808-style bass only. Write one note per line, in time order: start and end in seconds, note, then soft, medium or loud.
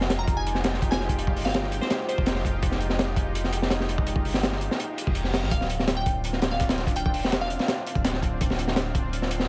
0.00 1.38 F1 medium
1.36 1.80 G1 medium
2.18 2.43 F1 medium
2.45 2.61 F1 loud
2.63 4.26 F1 loud
4.25 4.69 G1 medium
5.07 5.44 F1 medium
5.43 5.51 G#1 medium
5.51 7.16 D1 loud
7.14 7.58 E1 medium
7.95 8.21 D1 medium
8.22 8.39 D1 loud
8.41 9.48 D1 loud